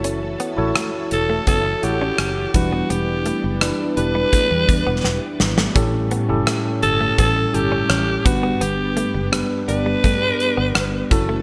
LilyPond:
<<
  \new Staff \with { instrumentName = "Alto saxophone" } { \time 4/4 \key g \lydian \tempo 4 = 84 r4. a'8 a'8 g'4 fis'8 | g'4 r8 b'2 r8 | r4. a'8 a'8 g'4 fis'8 | g'4 r8 b'2 r8 | }
  \new Staff \with { instrumentName = "Tine electric piano" } { \time 4/4 \key g \lydian <e' fis' a' cis''>8. <e' fis' a' cis''>4. r16 <e' a' cis'' fis''>4 <g d' e' b'>8~ | <g d' e' b'>4 <d' e' g' b'>8 <d' e' g' b'>4.~ <d' e' g' b'>16 r8. | <cis' e' g' a'>8. <cis' e' g' a'>4. r16 <cis' e' g' a'>4 <g b d' b'>8~ | <g b d' b'>4 <b d' g' b'>8 <b d' g' d''>4.~ <b d' g' d''>16 r16 <cis' e' fis' a'>8 | }
  \new Staff \with { instrumentName = "Tine electric piano" } { \clef bass \time 4/4 \key g \lydian r2. r8 e8~ | e4 r2. | a,4. r2 g,8~ | g,4 r2. | }
  \new Staff \with { instrumentName = "String machine" } { \time 4/4 \key g \lydian << { <e e' a'>2.~ <e e' a'>8 <e g d'>8~ | <e g d'>1 | <a cis'>2.~ <a cis'>8 <b d'>8~ | <b d'>2.~ <b d'>8 <e e' a'>8 | } \\ { cis'2.~ cis'8 b8~ | b1 | g1~ | g2.~ g8 cis'8 | } >> }
  \new Staff \with { instrumentName = "Clean electric guitar" } { \time 4/4 \key g \lydian cis'16 r16 b16 r16 a16 r8 a16 b16 r8 cis'16 cis'16 r8 b16 | b16 r16 a16 r16 g16 r8 g16 a16 r8 b16 b16 r8 a16 | cis'16 r16 b16 r16 a16 r8 a16 b16 r8 cis'16 cis'16 r8 b16 | b16 r16 a16 r16 g16 r8 g16 a16 r8 b16 b16 r8 a16 | }
  \new Staff \with { instrumentName = "Fingered electric bass" } { \clef bass \time 4/4 \key g \lydian fis,,8. a,,16 r8 e,,8 fis,,8 a,,8 fis,,8 e,,8 | e,,8. fis,,8 r16 e,,8 r16 e,16 e,16 e,,16 e,,16 r16 gis,,8 | a,,8. fis,,16 r8 g,,8 a,,8 g,,8 a,,8 g,,8 | g,,8. fis,,8 r16 g,,8 g,8 r16 g,,16 g,,8 fis,,8 | }
  \new DrumStaff \with { instrumentName = "Drums" } \drummode { \time 4/4 hh8 hh8 <hh ss>8 hh8 <hh bd>8 hh8 <hh ss>8 <hh bd>8 | hh8 hh8 <hh ss>8 hh8 <hh bd>8 <hh bd>8 sn8 sn16 sn16 | <hh bd>8 hh8 <hh ss>8 hh8 <hh bd>8 hh8 <hh ss>8 <hh bd>8 | hh8 hh8 <hh ss>8 hh8 <hh bd>8 hh8 <hh ss>8 <hh bd>8 | }
>>